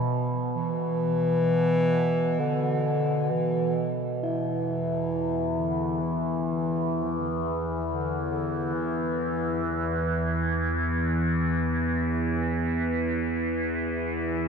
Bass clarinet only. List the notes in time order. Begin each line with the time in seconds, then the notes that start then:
Already playing: E3
0.55 E3
2.40 D3
3.31 E3
4.25 E3
5.51 E3
5.59 D3
6.02 E3
7.02 F3
7.11 E3
7.21 D3
7.31 E3
7.85 D3
8.31 D3
8.74 E3
9.64 E3